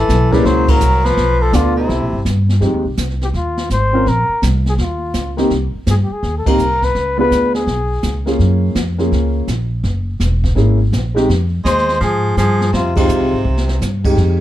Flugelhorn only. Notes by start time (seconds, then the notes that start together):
0.00 A4
0.33 B4
0.47 C5
0.70 A#4
1.06 B4
1.42 A4
1.55 F4
1.79 E4
3.23 G4
3.37 F4
3.72 C5
4.08 A#4
4.69 G#4
4.81 F4
5.90 G#4
6.03 G4
6.13 G#4
6.38 A4
6.48 A#4
6.84 B4
7.20 B4
7.55 G#4
11.67 C5
12.03 G#4
12.39 G#4
12.75 F4
12.99 F4